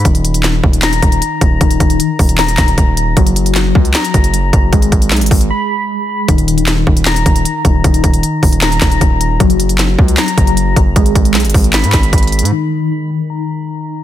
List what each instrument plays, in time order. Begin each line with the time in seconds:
0.05 808-style bass D#1, synth keys D#3, kick, closed hi-hat
0.15 closed hi-hat
0.25 closed hi-hat
0.34 closed hi-hat
0.43 synth keys D#3, snare, clap, closed hi-hat
0.64 808-style bass D#1, kick
0.73 closed hi-hat
0.82 synth keys A#5, snare, clap, closed hi-hat
0.93 closed hi-hat
1.02 808-style bass D#1, kick, closed hi-hat
1.12 closed hi-hat
1.22 closed hi-hat
1.41 808-style bass D#1, kick, closed hi-hat
1.61 808-style bass D#1, synth keys D#3, kick, closed hi-hat
1.71 closed hi-hat
1.80 808-style bass D#1, kick, closed hi-hat
1.90 closed hi-hat
2.00 synth keys D#3, closed hi-hat
2.19 808-style bass D#1, kick, open hi-hat
2.29 closed hi-hat
2.38 synth keys A#5, snare, clap, closed hi-hat
2.48 closed hi-hat
2.57 808-style bass D#1, kick, snare, clap, closed hi-hat
2.68 closed hi-hat
2.78 808-style bass D#1, kick, closed hi-hat
2.97 closed hi-hat
3.17 808-style bass F#1, synth keys F#3, kick, closed hi-hat
3.27 closed hi-hat
3.36 closed hi-hat
3.46 closed hi-hat
3.55 synth keys F#3, snare, clap, closed hi-hat
3.75 808-style bass C#2, kick
3.85 closed hi-hat
3.94 synth keys A#5, snare, clap, closed hi-hat
4.04 closed hi-hat
4.14 808-style bass F#1, kick, closed hi-hat
4.24 closed hi-hat
4.34 closed hi-hat
4.53 808-style bass F#1, kick, closed hi-hat
4.73 808-style bass G#1, synth keys G#3, kick, closed hi-hat
4.82 closed hi-hat
4.92 808-style bass G#1, kick, closed hi-hat
5.02 closed hi-hat
5.11 808-style bass B1, synth keys G#3, snare, clap, closed hi-hat
5.16 closed hi-hat
5.21 808-style bass G#1, closed hi-hat
5.26 closed hi-hat
5.31 808-style bass G#1, kick, open hi-hat
5.41 closed hi-hat
5.50 synth keys B5
6.28 808-style bass D#1, synth keys D#3, kick, closed hi-hat
6.38 closed hi-hat
6.48 closed hi-hat
6.58 closed hi-hat
6.67 synth keys D#3, snare, clap, closed hi-hat
6.87 808-style bass D#1, kick
6.97 closed hi-hat
7.06 synth keys A#5, snare, clap, closed hi-hat
7.16 closed hi-hat
7.26 808-style bass D#1, kick, closed hi-hat
7.36 closed hi-hat
7.45 closed hi-hat
7.65 808-style bass D#1, kick, closed hi-hat
7.84 808-style bass D#1, synth keys D#3, kick, closed hi-hat
7.94 closed hi-hat
8.04 808-style bass D#1, kick, closed hi-hat
8.14 closed hi-hat
8.23 synth keys D#3, closed hi-hat
8.43 808-style bass D#1, kick, open hi-hat
8.53 closed hi-hat
8.61 synth keys A#5, snare, clap, closed hi-hat
8.72 closed hi-hat
8.81 808-style bass D#1, kick, snare, clap, closed hi-hat
8.91 closed hi-hat
9.01 808-style bass D#1, kick, closed hi-hat
9.21 closed hi-hat
9.40 808-style bass F#1, synth keys F#3, kick, closed hi-hat
9.50 closed hi-hat
9.60 closed hi-hat
9.69 closed hi-hat
9.78 synth keys F#3, snare, clap, closed hi-hat
9.99 808-style bass C#2, kick
10.08 closed hi-hat
10.17 synth keys A#5, snare, clap, closed hi-hat
10.28 closed hi-hat
10.38 808-style bass F#1, kick, closed hi-hat
10.47 closed hi-hat
10.57 closed hi-hat
10.76 808-style bass F#1, kick, closed hi-hat
10.96 808-style bass G#1, synth keys G#3, kick, closed hi-hat
11.06 closed hi-hat
11.15 808-style bass G#1, kick, closed hi-hat
11.25 closed hi-hat
11.34 808-style bass B1, synth keys G#3, snare, clap, closed hi-hat
11.40 closed hi-hat
11.45 808-style bass G#1, closed hi-hat
11.50 closed hi-hat
11.54 808-style bass G#1, kick, open hi-hat
11.64 closed hi-hat
11.73 synth keys B5, snare, clap, closed hi-hat
11.84 808-style bass G#2, closed hi-hat
11.93 808-style bass G#1, kick, snare, clap, closed hi-hat
12.03 closed hi-hat
12.13 808-style bass G#1, kick, closed hi-hat
12.18 closed hi-hat
12.23 closed hi-hat
12.27 closed hi-hat
12.32 closed hi-hat
12.39 808-style bass G#2, closed hi-hat
12.45 closed hi-hat
12.52 synth keys D#3
12.91 synth keys D#3
13.30 synth keys A#5